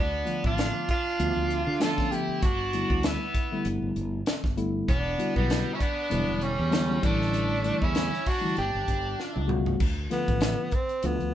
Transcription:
Already playing: D2 D4
0.00 B3
0.25 D3 F3 A3 B3 F4, closed hi-hat
0.44 A1 D4 F4, kick
0.58 snare, closed hi-hat
0.89 F4, kick, closed hi-hat
0.93 D4
1.19 D2 D3 F3 A3 B3 F4, closed hi-hat
1.36 D2
1.50 closed hi-hat
1.67 D3
1.80 D3 F3 A3 B3 F4 A4, snare, closed hi-hat
1.84 F4
1.98 D3 F3 A3 B3 C#4, kick, snare
2.12 D3 F3 A3 B3 D4 E4 G4, closed hi-hat
2.28 muted fretless electric bass stroke
2.42 G1 D4 F#4, kick, closed hi-hat
2.73 D3 G3 A3 B3 E4, closed hi-hat
2.90 D2, kick
3.03 B3 E4, snare, closed hi-hat
3.34 kick, closed hi-hat
3.52 D3 G3 A3 B3 E4
3.65 G1, closed hi-hat
3.82 G1
3.96 G1, closed hi-hat
4.26 snare, closed hi-hat
4.44 G1, kick, snare
4.57 D3 G3 A3 B3 E4, closed hi-hat
4.88 E1 B3 D4, kick, closed hi-hat
5.18 D3 G3 B3 E4 F#4, closed hi-hat
5.36 B1 G3 B3, kick
5.50 snare, closed hi-hat
5.74 C#4 E4
5.80 B3 D4, kick, closed hi-hat
6.10 E1 D3 F#3 G3 B3 E4, closed hi-hat
6.29 E1
6.41 G3 C#4, closed hi-hat
6.59 E2
6.71 D3 F#3 G3 B3 E4, snare, closed hi-hat
6.88 D3 F#3 G3 B3 C#4
7.02 A1 D3 E3 G3 A3 D4 E4, kick, closed hi-hat
7.22 snare
7.34 closed hi-hat
7.63 D3 E3 G3 A3 E4, closed hi-hat
7.82 E2 C#4 E4, kick
7.95 snare, closed hi-hat
8.14 snare
8.26 D4 F#4, kick, open hi-hat
8.41 D3 E3 G3 A3 E4
8.57 G1 G4, closed hi-hat
8.61 D4
8.75 G1
8.88 G1, kick, closed hi-hat
9.20 snare
9.36 C#2, high tom
9.47 C#3 G3 A3 B3 F#4, mid tom
9.66 floor tom
9.80 D2, kick, crash
10.10 D3 F3 A3 B3 F4, snare, closed hi-hat
10.28 A1, kick, closed hi-hat
10.41 snare, closed hi-hat
10.71 C4, kick, closed hi-hat
10.89 closed hi-hat
11.03 D2 D3 F3 A3 B3 F4, closed hi-hat
11.20 D2, closed hi-hat

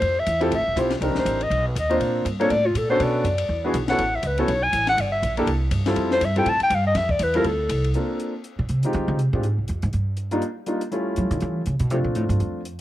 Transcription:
Already playing: C5
0.02 F2, kick, ride
0.20 E5
0.26 E2, kick, hi-hat pedal, ride
0.40 C4 E4 F4 G4 A4 C5, ride
0.51 A1 E5, kick, ride
0.60 F1
0.67 E1
0.76 B1 C4 E4 F4 G4 C5, kick, hi-hat pedal, ride
0.90 snare, ride
1.01 C2 C4 D4 D#4 G4 A#4, kick, ride
1.10 A#1
1.15 G1 C5, snare
1.25 A1, kick, hi-hat pedal, ride
1.41 D#5, ride
1.50 B1, kick, ride
1.68 B4
1.75 D#2 D#5, kick, hi-hat pedal, ride
1.90 A#3 C4 D4 F4 C5, ride
2.00 A#2, kick, ride
2.25 G2, kick, hi-hat pedal, ride
2.40 A#3 C4 D4 F4 A4 C#5, ride
2.50 A2 D5, kick, ride
2.66 F4
2.75 A#2 A4, kick, hi-hat pedal, ride
2.90 B3 C#4 D4 F#4 A4 C5
3.00 B2 D5, kick, ride
3.24 F#2, kick, hi-hat pedal, ride
3.38 ride
3.49 E2, kick
3.64 B3 D4 E4 F#4 G#4
3.74 B1, kick, hi-hat pedal, ride
3.88 B3 C#4 E4 F#4 A4 F#5, snare, ride
3.98 A1, kick, ride
4.15 E5
4.23 C#2, kick, hi-hat pedal, ride
4.27 B4
4.38 B3 C#4 E4 F#4 A4 C#5, ride
4.48 B1, kick, ride
4.63 G#5
4.73 A1, kick, hi-hat pedal, ride
4.87 F#5, snare, ride
4.97 G1 D5, kick, ride
5.12 E5
5.23 A#1, kick, hi-hat pedal, ride
5.37 A#3 D4 E4 G4 A4, ride
5.47 C2, kick, ride
5.71 G2, kick, hi-hat pedal, ride
5.86 G3 C4 E4 F4 A4, snare, ride
5.96 F2, kick, ride
6.11 C5, snare
6.21 G2, kick, hi-hat pedal, ride
6.25 E5
6.36 G3 C4 E4 F4 A4 G5, ride
6.45 A2 A5, kick, ride
6.60 G5, muted upright bass stroke, ride
6.70 G2, kick, hi-hat pedal, ride
6.75 F5
6.87 D#5
6.95 F2 E5, kick, snare, ride
7.09 D5, kick
7.19 E2, kick, hi-hat pedal, ride
7.23 B4
7.34 G3 C4 E4 F4 A4 A#4, ride
7.44 D2 A4, kick, ride
7.69 C2, kick, hi-hat pedal, ride
7.84 ride
7.94 A#3 C4 D4 F4 A4, closed hi-hat
8.20 closed hi-hat
8.44 closed hi-hat
8.59 A#2
8.69 C3, closed hi-hat
8.83 D3 G#3 C4 D#4 F4 G4, closed hi-hat
8.93 D#3, closed hi-hat
9.08 D3
9.19 C3, closed hi-hat
9.33 A#2 G#3 C4 D4 F4 G4
9.43 G#2, closed hi-hat
9.58 C2
9.68 F2, closed hi-hat
9.82 G#2, closed hi-hat
9.93 G2, closed hi-hat
10.17 closed hi-hat
10.31 G3 A#3 D4 D#4 F4, closed hi-hat
10.42 closed hi-hat
10.66 G3 A#3 D4 D#4 F4, closed hi-hat
10.81 closed hi-hat
10.91 G3 A3 C#4 E4 F4, closed hi-hat
11.16 F#3, closed hi-hat
11.31 D#3, closed hi-hat
11.40 E3, closed hi-hat
11.66 C#3, closed hi-hat
11.79 B2, closed hi-hat
11.90 C3 F3 A3 C4 D4 F4, closed hi-hat
12.04 A#2
12.15 A2, closed hi-hat
12.29 G2, closed hi-hat
12.40 F2, closed hi-hat
12.65 closed hi-hat

